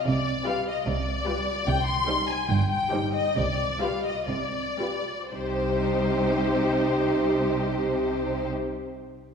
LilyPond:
<<
  \new Staff \with { instrumentName = "Violin section" } { \time 4/4 \key c \minor \tempo 4 = 124 d''4 f''8 ees''8 d''2 | g''8 c'''4 aes''8 g''8 g''4 ees''8 | d''4 f''8 ees''8 d''2 | c''1~ |
c''1 | }
  \new Staff \with { instrumentName = "Violin section" } { \time 4/4 \key c \minor r4 <g' b'>4 r4 <g' b'>4 | r4 <g' c''>4 r4 <g' c''>4 | r4 <g' b'>4 r4 <g' b'>4 | <g' c''>1~ |
<g' c''>1 | }
  \new Staff \with { instrumentName = "Viola section" } { \time 4/4 \key c \minor r4 <g f'>4 r4 <g f'>4 | r4 <g ees'>4 r4 <g ees'>4 | r4 <g f'>4 r4 <g f'>4 | <g ees'>1~ |
<g ees'>1 | }
  \new Staff \with { instrumentName = "Cello section" } { \clef bass \time 4/4 \key c \minor c4 r4 c4 r4 | c4 r4 g,4 r4 | c4 r4 c4 r4 | c1~ |
c1 | }
  \new Staff \with { instrumentName = "Double bass section" } { \clef bass \time 4/4 \key c \minor c,4 r4 c,4 r4 | c,4 r4 g,,4 r4 | c,4 r4 c,4 r4 | c,1~ |
c,1 | }
>>